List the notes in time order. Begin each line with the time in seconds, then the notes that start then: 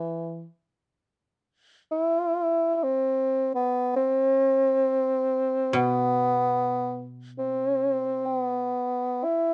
Already playing: E3
1.92 E4
2.75 E4
2.83 C4
3.55 B3
3.96 C4
5.73 B2 B3
7.39 C4
8.26 C4
8.39 B3
9.24 E4